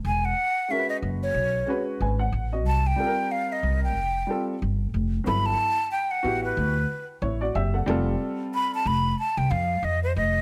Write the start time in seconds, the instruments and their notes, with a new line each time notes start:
0.05 upright bass E1, flute G#5
0.25 flute F#5
0.68 upright piano G#3 C#4 F#4, flute E5
0.73 upright piano A#4
0.79 upright piano B4
0.89 flute D#5
1.02 upright bass F#1
1.23 flute C#5
1.34 upright bass B1
1.66 upright piano G#3 C#4 F#4 B4
2.00 upright bass G#1, upright piano B4 G#5
2.19 upright piano F#5
2.32 upright bass A1
2.53 upright piano F#4 D#5
2.65 upright bass C2, flute A5
2.87 flute G5
2.96 upright piano G3 C4 F4 A4
3.07 upright piano A#4
3.31 flute F5
3.52 flute D#5
3.63 upright bass C2
3.84 flute G5
3.96 upright bass F1
4.27 upright piano G3 C4 F4 A4
4.62 upright bass G1
4.94 upright bass F1
5.24 upright bass G1, upright piano F#3 B3 E4 A4, flute B5
5.46 flute A5
5.91 flute G5
6.11 flute F#5
6.23 upright bass A1, upright piano B3 E4 F#4 G4
6.44 flute B4
6.57 upright bass D2
7.22 upright bass A1, upright piano E4 C#5
7.41 upright piano F#4 D5
7.55 upright bass F#1, upright piano G4 E5
7.74 upright piano A4 F#5
7.86 upright bass F1, upright piano G3 C4 F4 A4
8.54 flute B5
8.75 flute A5
8.86 upright bass F1, flute B5
9.19 flute A5
9.37 upright bass C2, flute G5
9.51 upright bass F2, flute F5
9.83 upright bass F2, flute D#5
10.03 flute C5
10.16 upright bass F1, flute D#5